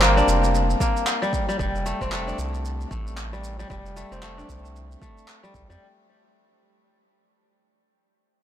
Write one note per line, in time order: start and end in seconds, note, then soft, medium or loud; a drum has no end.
0.00 0.22 G1 medium
0.00 1.21 G3 medium
0.00 0.80 A#3 medium
0.00 1.70 C4 medium
0.00 clap medium
0.00 shaker soft
0.17 1.85 D4 medium
0.17 shaker soft
0.28 0.75 F1 medium
0.28 shaker medium
0.44 shaker soft
0.55 shaker soft
0.70 shaker soft
0.80 1.92 A#3 medium
0.80 kick medium
0.80 shaker medium
0.97 shaker soft
1.07 clap medium
1.07 shaker soft
1.22 1.47 G3 medium
1.22 shaker soft
1.33 kick medium
1.33 shaker medium
1.49 1.58 G3 medium
1.49 shaker soft
1.59 1.93 F1 medium
1.59 3.32 G3 medium
1.59 kick loud
1.59 shaker soft
1.76 shaker soft
1.86 2.12 A3 medium
1.86 shaker medium
2.01 2.33 F1 medium
2.01 3.81 C4 medium
2.01 kick medium
2.01 shaker soft
2.12 2.90 A3 loud
2.12 clap medium
2.12 shaker soft
2.27 3.95 D4 medium
2.27 shaker soft
2.38 2.85 C2 medium
2.38 shaker medium
2.54 shaker soft
2.65 shaker soft
2.81 shaker soft
2.91 3.64 A1 medium
2.91 3.96 A3 medium
2.91 kick medium
2.91 shaker medium
3.07 shaker soft
3.17 clap medium
3.17 shaker soft
3.33 3.58 G3 medium
3.33 shaker soft
3.44 shaker medium
3.59 3.69 G3 medium
3.59 shaker soft
3.70 4.04 F1 medium
3.70 5.42 G3 medium
3.70 kick loud
3.70 shaker soft
3.86 shaker soft
3.96 4.22 A3 medium
3.96 shaker medium
4.12 4.43 F1 medium
4.12 5.92 C4 medium
4.12 shaker soft
4.23 5.01 A3 medium
4.23 clap medium
4.23 shaker soft
4.38 6.06 D4 medium
4.38 shaker soft
4.49 4.96 C2 medium
4.49 kick medium
4.49 shaker medium
4.65 shaker soft
4.76 shaker soft
4.92 shaker soft
5.02 7.01 A3 medium
5.02 kick loud
5.02 shaker medium
5.18 shaker soft
5.28 clap medium
5.28 shaker soft
5.43 5.68 G3 medium
5.43 shaker soft
5.54 5.65 C2 medium
5.54 kick medium
5.54 shaker medium
5.70 5.77 F2 medium
5.70 5.85 G3 medium
5.70 shaker soft